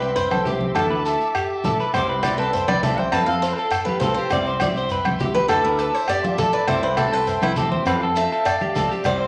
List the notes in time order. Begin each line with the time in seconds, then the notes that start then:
Already playing: B4 E5 G5 C6
0.02 C2, muted clean electric guitar stroke, shekere
0.15 B4 C5, shekere
0.31 C2 A4, high conga, low agogo, shekere
0.45 C2 E4 G4, low conga, shekere
0.50 C4
0.61 high conga
0.74 D2 E3 A3 E4 A4 A5 D6, low agogo, shekere
0.90 D2 B4
1.06 A3 E4 A4, shekere
1.21 shekere
1.35 G4, low agogo, shekere
1.64 A1 A3 E4 A4, high conga, low conga, shekere
1.80 B4, shekere
1.92 C2 G3 C4 E4 C5 G5 C6, low conga, low agogo, shekere
1.96 G4
2.09 B4
2.23 C4 E4 G4 D5, low conga, low agogo, shekere
2.38 C2 A4 B4, shekere
2.53 C5, shekere
2.68 C2 B4 D5, high conga, low agogo, shekere
2.83 C2 C4 E4 G4 A4 E5, low conga, shekere
2.98 C5 G5, high conga
3.12 F2 G3 C4 F4 A4 B4 F5 A5, low agogo, shekere
3.26 F2 A4 F5
3.42 C4 F4 A4 C5, shekere
3.56 A4, shekere
3.70 A4, low agogo, shekere
3.85 G4 B4, high conga, shekere
4.00 C2 F4 A4 C5, high conga, low conga, shekere
4.04 C4
4.14 C5, shekere
4.19 G4
4.30 C2 G3 C4 E4 G4 D5 E5 G5 C6, low conga, low agogo, shekere
4.46 C5, shekere
4.60 C4 E4 G4 D5, high conga, low conga, low agogo, shekere
4.75 C2 C5, shekere
4.89 B4, shekere
5.05 C2, high conga, low agogo, shekere
5.19 C2 E4 G4, low conga, shekere
5.35 B4, high conga, shekere
5.48 D2 A3 E4 A4 A5 D6, low agogo, shekere
5.64 D2 A#4 B4
5.79 E4 A4 B4, shekere
5.94 C5, shekere
6.08 G4 D5, low agogo, shekere
6.24 F4, high conga
6.38 A1 A4, high conga, low conga, shekere
6.42 E4
6.53 B4 D5
6.67 C2 G3 C4 E4 G4 C5 E5 G5 C6, low conga, low agogo, shekere
6.83 B4 C5
6.97 C4 E4 G4 A4, low conga, low agogo, shekere
7.12 C2 A4 B4, shekere
7.27 C5, shekere
7.41 C2 E4 B4, high conga, low agogo, shekere
7.56 E2 C4 E4 G4 A4, low conga, shekere
7.72 C5, high conga
7.85 F2 G3 C4 F4 A4 B4 F5 A5, low agogo, shekere
8.01 F2 A4
8.16 C4 F4 A4 E5, shekere
8.32 A4, shekere
8.45 D5, low agogo, shekere
8.61 G4, high conga, shekere
8.75 C#2 C4 F4 A4, high conga, low conga, shekere
8.91 G4, shekere
9.04 C2 G3 C4 E4 G4 C5 D5 E5 C6, low conga, low agogo, shekere
9.20 C5